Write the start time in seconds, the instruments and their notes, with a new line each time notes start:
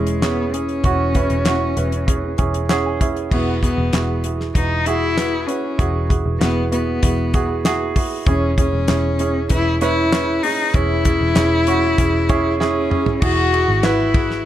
Already playing: picked electric bass E1, felt piano E3 C#4 E4 G#4 B4, cello G#3
0.07 closed hi-hat
0.22 cello B3, felt piano C#4 E4 G#4, snare, clap, closed hi-hat
0.54 felt piano C#4 E4 G#4, cello C#4, closed hi-hat
0.69 closed hi-hat
0.84 picked electric bass E1, felt piano E3 C#4 E4 F#4, kick, closed hi-hat
1.15 felt piano C#4 E4 B4, kick, closed hi-hat
1.30 picked electric bass E1, closed hi-hat
1.45 felt piano C#4 E4 F#4, snare, clap, closed hi-hat
1.76 picked electric bass E1, felt piano C#4 E4 B4, closed hi-hat
1.92 closed hi-hat
2.07 felt piano C#4 E4 G#4, kick, closed hi-hat
2.38 picked electric bass E1, felt piano C#4 E4 G#4 G#5, kick, closed hi-hat
2.54 closed hi-hat
2.69 felt piano C#4 E4 G#4 F#5, snare, clap, closed hi-hat
2.86 felt piano G#5
3.01 felt piano C#4 E4 G#4 E5, kick, closed hi-hat
3.16 closed hi-hat
3.31 picked electric bass E1, felt piano E3 E4 F#4 G#4, cello B3, kick, crash
3.62 cello B3, felt piano E4 F#4 G#4, kick, closed hi-hat
3.78 picked electric bass E1
3.93 picked electric bass E1, felt piano E4 F#4 G#4, snare, clap, closed hi-hat
4.24 felt piano E4 F#4 G#4, closed hi-hat
4.40 snare
4.55 picked electric bass E1, cello D#4, felt piano E4 F#4 B4, kick, closed hi-hat
4.86 cello E4, felt piano E4 F#4 G#4, closed hi-hat
5.17 felt piano E4 F#4 B4, snare, clap, closed hi-hat
5.47 cello C#4, felt piano E4 F#4 B4, closed hi-hat
5.78 picked electric bass E1, felt piano E3 E4 F#4 G#4, kick, closed hi-hat
6.09 felt piano E4 F#4 G#4, kick, closed hi-hat
6.26 picked electric bass E1
6.40 picked electric bass E1, cello B3, felt piano E4 F#4 G#4, snare, clap, closed hi-hat
6.71 cello B3, felt piano E4 F#4 B4, closed hi-hat
7.03 picked electric bass E1, felt piano E4 F#4 G#4, kick, closed hi-hat
7.34 felt piano E4 F#4 G#4, kick, closed hi-hat
7.65 felt piano E4 F#4 G#4, snare, clap, closed hi-hat
7.96 felt piano E4 F#4 G#4, kick, open hi-hat
8.26 picked electric bass E1, felt piano E3 C#4 E4 G#4, cello C#4, kick, closed hi-hat
8.58 felt piano C#4 E4 G#4, cello C#4, kick, closed hi-hat
8.73 picked electric bass E1
8.88 picked electric bass E1, felt piano C#4 E4 G#4, snare, clap, closed hi-hat
9.19 felt piano C#4 E4 G#4, closed hi-hat
9.49 picked electric bass E1, felt piano C#4 E4 B4, cello E4, kick, closed hi-hat
9.81 felt piano C#4 E4 B4, cello E4, closed hi-hat
10.12 felt piano C#4 E4 B4, snare, clap, closed hi-hat
10.43 felt piano C#4 E4 G#4, cello D#4, open hi-hat
10.74 picked electric bass E1, felt piano E3 C#4 E4 G#4, cello E4, kick, closed hi-hat
11.05 felt piano C#4 E4 G#4, kick, closed hi-hat
11.21 picked electric bass E1
11.35 picked electric bass E1, felt piano C#4 E4 G#4, snare, clap, closed hi-hat
11.67 felt piano C#4 E4 F#4, closed hi-hat
11.98 picked electric bass E1, felt piano C#4 E4 G#4, kick, closed hi-hat
12.29 felt piano C#4 E4 G#4, kick, closed hi-hat
12.60 felt piano C#4 E4 G#4, cello C#4, snare
12.90 felt piano C#4 E4 G#4, mid tom
13.06 floor tom
13.22 picked electric bass E1, felt piano E3 E4 F#4 G#4, cello F#4, kick, crash
13.53 felt piano E4 F#4 G#4, ride
13.68 picked electric bass G#1
13.83 felt piano E4 F#4 B4, cello E4, snare, clap, ride
14.14 felt piano E4 F#4 G#4, kick, ride
14.30 snare